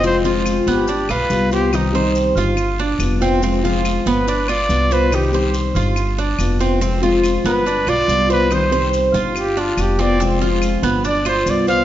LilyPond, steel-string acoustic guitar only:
\new Staff \with { instrumentName = "Steel-string acoustic guitar" } { \time 4/4 \key g \phrygian \tempo 4 = 142 <c f aes c' f'>8 <f aes c' f'>4. r4 <g b f'>8 <b f'>8 | <c ees g c' g'>8 <ees g c' g'>4. r4 <g b f'>8 <b f'>8 | <c f aes c' f'>8 <f aes c' f'>4. r4 <g b f'>8 <b f'>8 | <c ees g c' g'>8 <ees g c' g'>4. r4 <g b f'>8 <b f'>8 |
<c f aes c' f'>8 <f aes c' f'>4. r4 <g b f'>8 <b f'>8 | <c ees g c' g'>8 <ees g c' g'>4. r4 <g b f'>8 <b f'>8 | <c f aes c' f'>8 <f aes c' f'>4. r4 <g b f'>8 <b f'>8 | }